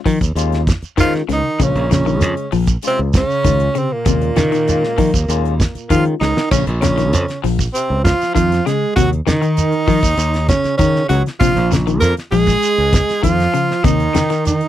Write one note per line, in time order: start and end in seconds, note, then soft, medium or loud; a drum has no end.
0.06 0.18 D#3 loud
0.06 0.24 F3 medium
0.06 kick medium
0.06 open hi-hat medium
0.06 shekere soft
0.21 0.33 D#2 medium
0.21 kick medium
0.21 closed hi-hat soft
0.21 shekere medium
0.35 0.71 D#2 medium
0.35 0.60 G#3 loud
0.35 0.61 C#4 medium
0.35 0.61 F4 loud
0.35 closed hi-hat medium
0.35 shekere medium
0.52 snare soft
0.52 closed hi-hat soft
0.67 kick medium
0.67 snare medium
0.67 closed hi-hat medium
0.67 shekere medium
0.82 muted fingered electric bass stroke soft
0.82 closed hi-hat soft
0.82 shekere soft
0.97 1.16 D#3 medium
0.97 1.21 D#3 loud
0.97 1.13 F3 medium
0.97 1.22 G#3 medium
0.97 1.22 C#4 medium
0.97 1.23 F4 medium
0.97 1.14 F4 loud
0.97 kick medium
0.97 closed hi-hat medium
0.97 shekere medium
1.13 snare soft
1.13 closed hi-hat soft
1.29 1.41 C#2 loud
1.29 1.47 C#3 medium
1.29 1.58 D#3 medium
1.29 snare soft
1.29 closed hi-hat medium
1.29 shekere soft
1.33 1.64 D#4 loud
1.60 1.72 A#1 medium
1.60 1.78 C#3 loud
1.60 1.88 C#3 medium
1.60 1.84 G#3 medium
1.60 1.84 C#4 medium
1.60 1.92 C#4 loud
1.60 1.84 F4 medium
1.60 kick medium
1.60 closed hi-hat medium
1.60 shekere medium
1.75 2.22 A#1 loud
1.75 closed hi-hat soft
1.90 2.48 C#3 medium
1.90 2.00 C#3 medium
1.90 2.50 C#4 medium
1.90 snare medium
1.90 closed hi-hat medium
1.90 shekere medium
2.06 2.24 D#3 medium
2.06 shekere soft
2.20 2.34 F2 loud
2.20 2.45 G#3 medium
2.20 2.45 C#4 medium
2.20 2.45 G#4 medium
2.20 closed hi-hat medium
2.20 shekere loud
2.37 closed hi-hat soft
2.52 2.76 A#1 loud
2.52 2.71 F3 medium
2.52 open hi-hat medium
2.52 shekere soft
2.67 kick medium
2.67 closed hi-hat soft
2.67 shekere medium
2.82 2.99 C3 medium
2.82 3.07 G#3 medium
2.82 3.07 C#4 medium
2.82 3.08 F4 medium
2.82 closed hi-hat medium
2.82 shekere medium
2.87 3.00 C4 loud
2.99 3.22 C#2 medium
3.14 3.72 C#3 loud
3.14 3.80 C#4 loud
3.14 kick medium
3.14 snare medium
3.14 closed hi-hat medium
3.14 shekere medium
3.31 shekere soft
3.44 3.68 C#2 medium
3.44 3.63 D#3 medium
3.44 3.68 G#3 medium
3.44 3.68 C#4 medium
3.44 3.69 F4 medium
3.44 kick medium
3.44 closed hi-hat medium
3.44 shekere medium
3.60 closed hi-hat soft
3.75 3.92 C3 medium
3.75 3.93 C#3 medium
3.75 3.94 C4 loud
3.75 closed hi-hat medium
3.75 shekere soft
3.92 5.91 A#2 medium
3.92 5.90 A#3 medium
4.05 4.29 D#2 loud
4.05 4.24 C3 medium
4.05 4.29 G#3 medium
4.05 4.30 C#4 medium
4.05 4.30 F4 loud
4.05 kick loud
4.05 closed hi-hat medium
4.05 shekere medium
4.21 closed hi-hat soft
4.36 4.46 C#3 medium
4.36 4.83 D#3 loud
4.36 snare medium
4.36 closed hi-hat medium
4.36 shekere medium
4.52 4.70 D#3 medium
4.52 snare soft
4.52 closed hi-hat soft
4.52 shekere soft
4.68 4.91 G#3 medium
4.68 4.92 C#4 medium
4.68 4.92 F4 loud
4.68 closed hi-hat medium
4.68 shekere loud
4.84 snare soft
4.98 5.10 D#3 medium
4.98 5.16 F3 medium
4.98 kick medium
4.98 open hi-hat medium
4.98 shekere soft
5.14 5.26 D#2 medium
5.14 kick medium
5.14 closed hi-hat soft
5.14 shekere medium
5.28 5.63 D#2 medium
5.28 5.53 G#3 loud
5.28 5.53 C#4 medium
5.28 5.54 F4 loud
5.28 closed hi-hat medium
5.28 shekere medium
5.45 closed hi-hat soft
5.60 kick medium
5.60 snare medium
5.60 closed hi-hat medium
5.60 shekere medium
5.75 muted fingered electric bass stroke soft
5.75 closed hi-hat soft
5.75 shekere soft
5.90 6.14 D#3 medium
5.90 6.09 D#3 medium
5.90 6.04 F3 medium
5.90 6.14 G#3 medium
5.90 6.14 C#4 medium
5.90 6.05 F4 loud
5.90 6.14 F4 medium
5.90 kick medium
5.90 closed hi-hat medium
5.90 shekere medium
6.05 closed hi-hat soft
6.20 6.33 C#2 loud
6.20 6.39 C#3 medium
6.20 6.50 D#3 medium
6.20 6.49 D#4 medium
6.20 snare medium
6.20 shekere soft
6.37 snare medium
6.51 6.63 A#1 loud
6.51 6.65 C#3 medium
6.51 6.70 C#3 medium
6.51 6.65 C#4 medium
6.51 kick loud
6.51 crash loud
6.51 shekere medium
6.67 7.13 A#1 loud
6.67 closed hi-hat soft
6.81 7.39 C#3 medium
6.81 6.92 C#3 medium
6.81 7.39 C#4 medium
6.81 snare medium
6.81 closed hi-hat medium
6.81 shekere medium
6.97 7.16 D#3 medium
6.97 snare soft
6.97 closed hi-hat soft
6.97 shekere soft
7.13 7.25 F2 loud
7.13 closed hi-hat medium
7.13 shekere loud
7.28 snare soft
7.28 closed hi-hat soft
7.44 7.67 A#1 loud
7.44 7.62 F3 medium
7.44 open hi-hat medium
7.44 shekere soft
7.59 kick medium
7.59 shekere medium
7.73 8.02 C3 medium
7.73 8.02 C4 medium
7.73 closed hi-hat medium
7.73 shekere medium
7.90 8.13 C#2 medium
8.03 8.32 F3 medium
8.03 8.33 F4 loud
8.03 kick medium
8.03 closed hi-hat medium
8.03 shekere medium
8.07 snare medium
8.21 snare soft
8.21 closed hi-hat soft
8.21 shekere soft
8.34 8.59 F2 medium
8.34 8.53 D#3 medium
8.34 8.63 F3 medium
8.34 8.68 F4 loud
8.34 kick medium
8.34 closed hi-hat medium
8.34 shekere medium
8.52 snare soft
8.52 closed hi-hat soft
8.65 8.84 C#3 medium
8.65 8.96 G#3 medium
8.65 8.95 G#4 medium
8.65 snare soft
8.65 closed hi-hat medium
8.65 shekere soft
8.96 9.20 D#2 medium
8.96 9.15 C3 medium
8.96 9.10 F#3 medium
8.96 9.10 F#4 loud
8.96 kick loud
8.96 closed hi-hat medium
8.96 shekere medium
9.13 closed hi-hat soft
9.27 9.36 C#3 medium
9.27 10.45 D#3 medium
9.27 9.73 D#3 loud
9.27 10.46 D#4 loud
9.27 snare medium
9.27 closed hi-hat medium
9.27 shekere medium
9.42 9.60 D#3 medium
9.42 closed hi-hat soft
9.42 shekere soft
9.57 closed hi-hat medium
9.57 shekere loud
9.72 closed hi-hat soft
9.87 9.99 D#3 loud
9.87 10.06 F3 medium
9.87 kick medium
9.87 open hi-hat medium
9.87 shekere soft
10.03 10.15 D#2 medium
10.03 kick medium
10.03 shekere medium
10.18 10.52 D#2 loud
10.18 closed hi-hat medium
10.18 shekere medium
10.34 snare soft
10.34 closed hi-hat soft
10.48 10.77 C#3 medium
10.48 10.77 C#4 loud
10.48 kick medium
10.48 snare medium
10.48 closed hi-hat medium
10.48 shekere medium
10.64 muted fingered electric bass stroke soft
10.64 snare soft
10.64 closed hi-hat soft
10.64 shekere soft
10.78 11.07 C#3 medium
10.78 11.02 D#3 medium
10.78 10.98 D#3 loud
10.78 11.07 C#4 loud
10.78 kick medium
10.78 closed hi-hat medium
10.78 shekere medium
10.96 snare soft
11.09 11.21 C#2 loud
11.09 11.28 C#3 medium
11.09 11.24 F#3 medium
11.09 11.23 F#4 loud
11.09 closed hi-hat medium
11.09 shekere soft
11.26 snare soft
11.26 closed hi-hat soft
11.40 11.52 A#1 loud
11.40 11.59 C3 loud
11.40 11.72 F3 loud
11.40 11.72 F4 loud
11.40 kick medium
11.40 closed hi-hat medium
11.40 shekere medium
11.56 12.02 A#1 loud
11.56 closed hi-hat soft
11.72 11.80 C#3 medium
11.72 snare medium
11.72 closed hi-hat medium
11.72 shekere medium
11.87 12.05 D#3 medium
11.87 closed hi-hat soft
11.87 shekere soft
12.00 12.13 F2 loud
12.00 12.15 A#3 medium
12.00 12.14 A#4 loud
12.00 closed hi-hat medium
12.00 shekere loud
12.17 snare soft
12.17 closed hi-hat soft
12.31 12.55 A#1 loud
12.31 12.50 F3 medium
12.31 13.19 G#3 loud
12.31 13.19 G#4 loud
12.31 open hi-hat medium
12.31 shekere soft
12.47 kick medium
12.47 snare soft
12.47 shekere medium
12.62 closed hi-hat medium
12.62 shekere medium
12.78 13.01 C#2 medium
12.93 kick medium
12.93 snare medium
12.93 closed hi-hat medium
12.93 shekere medium
13.09 snare soft
13.09 closed hi-hat soft
13.09 shekere soft
13.23 13.46 F2 medium
13.23 13.41 D#3 medium
13.23 13.80 F3 loud
13.23 13.86 F4 loud
13.23 kick medium
13.23 closed hi-hat medium
13.23 shekere medium
13.40 snare soft
13.40 closed hi-hat soft
13.54 13.72 C#3 medium
13.54 closed hi-hat medium
13.54 shekere soft
13.71 snare soft
13.84 14.07 D#2 loud
13.84 14.02 C3 loud
13.84 14.45 D#3 loud
13.84 14.45 D#4 loud
13.84 kick loud
13.84 closed hi-hat medium
13.84 shekere medium
14.00 closed hi-hat soft
14.14 14.23 C#3 medium
14.14 14.60 D#3 medium
14.14 snare medium
14.14 closed hi-hat medium
14.14 shekere medium
14.30 14.48 D#3 medium
14.30 snare soft
14.30 closed hi-hat soft
14.30 shekere soft
14.45 14.68 D#3 medium
14.45 14.68 D#4 loud
14.45 closed hi-hat medium
14.45 shekere medium
14.61 closed hi-hat soft